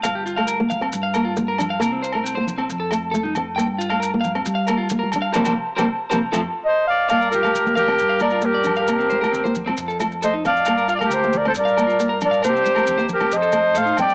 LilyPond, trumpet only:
\new Staff \with { instrumentName = "Trumpet" } { \time 4/4 \key g \minor \tempo 4 = 136 r1 | r1 | r1 | r2. c''8 d''8 |
d''8 g'4 g'4 bes'8 g'8. g'16~ | g'4.~ g'16 r4 r16 c''8 d''8~ | d''8 d''16 g'16 g'8 bes'16 a'16 bes'4. bes'8 | g'4. g'8 c''4 c''8 d''8 | }